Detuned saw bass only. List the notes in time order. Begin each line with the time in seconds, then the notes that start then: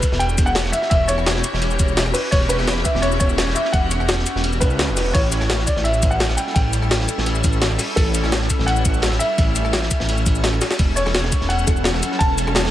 0.12 E1
0.38 E1
0.65 E1
0.91 E1
1.18 E1
1.53 E1
1.79 E1
2.06 E1
2.32 E1
2.59 E1
2.95 E1
3.21 E1
3.47 E1
3.74 E1
4.00 E1
4.36 E1
4.62 C#2
4.89 E1
5.15 A1
5.41 A1
5.77 A1
6.03 A1
6.30 A1
6.56 A1
6.83 A1
7.18 A1
7.44 A1
7.71 A1
7.97 A1
8.24 A1
8.59 A1
8.85 A1
9.12 A1
9.38 A1
9.65 A1
10.00 A1
10.26 A1
10.53 A1
10.79 E1
11.06 E1
11.41 E1
11.68 E1
11.94 E1
12.21 E1
12.47 E1